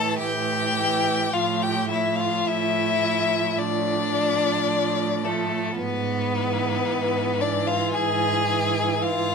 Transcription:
0.00 0.73 E3 soft
0.00 0.19 A4 medium
0.00 0.18 A5 medium
0.18 1.19 A2 medium
0.18 1.35 G4 medium
0.18 1.35 G5 medium
0.76 1.32 E3 soft
1.33 2.33 A2 medium
1.33 1.89 F3 soft
1.33 1.64 F4 medium
1.33 1.64 F5 medium
1.62 1.90 G4 medium
1.62 1.88 G5 medium
1.89 3.00 F3 soft
1.89 2.21 E4 medium
1.89 2.18 E5 medium
2.16 2.49 F4 medium
2.16 2.48 F5 medium
2.47 3.45 A2 medium
2.47 3.61 E4 medium
2.47 3.60 E5 medium
3.02 4.10 F3 soft
3.58 4.55 A2 medium
3.58 5.26 D4 medium
3.58 5.26 D5 medium
4.13 5.22 F3 medium
4.68 5.66 A2 soft
5.24 5.78 F3 soft
5.24 5.78 A3 medium
5.24 5.79 A4 medium
5.78 6.74 G#2 medium
5.78 7.42 B3 medium
5.78 7.42 B4 medium
6.32 7.38 E3 soft
6.86 7.82 G#2 medium
7.40 8.47 E3 soft
7.40 7.69 D4 medium
7.40 7.69 D5 medium
7.67 7.96 F4 medium
7.67 7.92 F5 medium
7.93 8.91 G#2 medium
7.93 9.05 G#4 medium
7.93 9.04 G#5 medium
8.51 9.35 E3 soft
9.02 9.35 G#2 medium
9.02 9.35 F4 medium
9.02 9.35 F5 medium

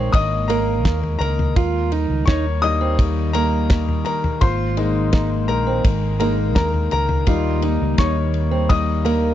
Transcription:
0.00 0.11 A#1 medium
0.00 9.34 D#3 medium
0.00 1.53 G#3 medium
0.00 1.54 G#3 medium
0.00 1.52 A#3 medium
0.00 1.53 A#3 medium
0.00 0.12 C4 medium
0.00 1.53 D#4 medium
0.00 0.51 A#4 medium
0.00 0.11 C#5 medium
0.00 0.48 A#5 medium
0.00 1.57 C#6 medium
0.12 0.85 G#1 loud
0.12 0.23 D#5 medium
0.12 0.21 D#6 loud
0.12 kick loud
0.12 ride medium
0.48 1.00 A#3 medium
0.48 1.17 A#4 medium
0.48 1.17 A#5 medium
0.48 ride medium
0.85 1.18 D#2 medium
0.85 kick loud
0.85 snare loud
0.85 ride medium
1.04 floor tom medium
1.19 1.53 C#2 loud
1.19 2.24 A#4 medium
1.19 2.30 A#5 loud
1.19 ride medium
1.39 floor tom medium
1.56 2.06 D#2 loud
1.56 4.39 G3 medium
1.56 9.34 A#3 medium
1.56 1.90 F4 loud
1.56 kick loud
1.56 ride medium
1.92 2.26 D#4 medium
1.92 ride medium
2.10 2.26 C#2 medium
2.26 4.02 D#2 loud
2.26 2.45 D#4 medium
2.26 2.61 C#5 medium
2.26 2.60 C#6 medium
2.26 kick loud
2.26 snare loud
2.26 ride medium
2.62 4.37 G3 medium
2.62 4.38 A#3 medium
2.62 4.38 D#4 medium
2.62 3.31 D#5 medium
2.62 3.36 D#6 loud
2.62 ride soft
2.81 2.98 C4 medium
2.99 kick loud
2.99 ride medium
3.33 3.85 A#3 medium
3.33 4.02 A#4 medium
3.33 4.01 A#5 loud
3.33 ride medium
3.70 kick loud
3.70 snare loud
3.70 ride medium
3.89 floor tom medium
4.05 4.39 A#4 medium
4.05 4.42 A#5 medium
4.05 ride medium
4.24 floor tom medium
4.41 5.49 G#1 loud
4.41 7.24 G#3 medium
4.41 4.76 F4 loud
4.41 5.45 C5 medium
4.41 5.44 C6 loud
4.41 kick loud
4.41 ride medium
4.77 6.19 G#3 medium
4.77 6.19 A#3 medium
4.77 5.11 D#4 medium
4.77 6.19 D#4 medium
4.77 ride medium
5.13 5.30 D#4 medium
5.13 kick loud
5.13 snare loud
5.13 ride medium
5.48 5.82 A#1 medium
5.48 6.16 A#4 medium
5.48 6.18 A#5 medium
5.48 ride soft
5.67 5.83 C4 medium
5.85 6.56 G#1 loud
5.85 kick loud
5.85 ride medium
6.20 6.52 G#3 soft
6.20 6.70 A#3 medium
6.20 6.52 A#3 soft
6.20 6.52 D#4 medium
6.20 6.54 A#4 medium
6.20 6.54 A#5 medium
6.20 ride medium
6.55 6.89 D#2 loud
6.55 6.89 A#4 medium
6.55 6.89 A#5 medium
6.55 kick loud
6.55 snare loud
6.55 ride medium
6.74 floor tom medium
6.91 7.25 C#2 medium
6.91 7.95 A#4 medium
6.91 7.95 A#5 loud
6.91 ride medium
7.09 floor tom medium
7.27 7.77 D#2 loud
7.27 8.30 G3 medium
7.27 9.34 G3 medium
7.27 8.31 A#3 medium
7.27 8.31 D#4 medium
7.27 7.61 F4 medium
7.27 kick loud
7.27 ride medium
7.62 7.97 D#4 medium
7.62 ride medium
7.82 7.98 C#2 medium
7.98 9.34 D#2 loud
7.98 8.16 D#4 medium
7.98 8.67 C#5 medium
7.98 8.66 C#6 medium
7.98 kick loud
7.98 snare loud
7.98 ride medium
8.34 ride soft
8.51 8.69 C4 medium
8.69 9.01 G3 soft
8.69 9.02 A#3 soft
8.69 9.02 D#4 medium
8.69 8.78 D#5 medium
8.69 8.77 D#6 loud
8.69 kick loud
8.69 ride medium
9.05 9.34 A#3 medium
9.05 9.34 A#4 medium
9.05 9.34 A#5 medium
9.05 ride medium

